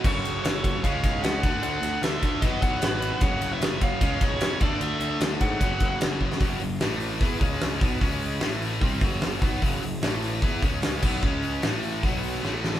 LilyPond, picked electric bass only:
\new Staff \with { instrumentName = "Picked electric bass" } { \clef bass \time 4/4 \key fis \minor \tempo 4 = 150 fis,,8 fis,,8 fis,,4 cis,8 b,,8 cis,8 d,8 | d,8 d,8 d,8 d,8 b,,8 b,,8 gis,,4 | fis,,8 fis,,8 fis,,4 cis,8 b,,8 eis,8 d,8 | d,8 d,8 d,8 gis,8 fis,,8 fis,,8 fis,,4 |
fis,,8 fis,,8 a,,4 e,8 cis,4 b,,8 | cis,4 a,,4 bis,,8 fis,,4 b,,8 | fis,,8 fis,,8 a,,4 e,8 cis,4 b,,8 | cis,4 a,,4 b,,4 a,,4 | }